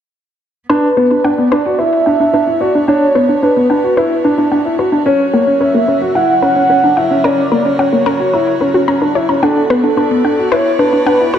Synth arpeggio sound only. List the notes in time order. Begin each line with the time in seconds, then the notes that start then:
0.69 B4
0.97 B4
1.24 F#5
1.52 B4
1.79 B4
2.06 F#5
2.34 B4
2.61 B4
2.88 F#5
3.15 B4
3.42 B4
3.70 F#5
3.97 B4
4.24 B4
4.52 F#5
4.79 B4
5.06 A#4
5.34 F#5
5.61 A#4
5.88 A#4
6.15 F#5
6.42 A#4
6.70 A#4
6.97 F#5
7.24 A#4
7.52 A#4
7.79 F#5
8.06 A#4
8.33 A#4
8.61 A#4
8.74 F#4
8.88 A#5
9.02 A#4
9.15 C#5
9.29 A#5
9.43 F#5
9.70 B4
9.97 B4
10.25 F#5
10.52 B4
10.79 B4
11.07 F#5
11.34 B4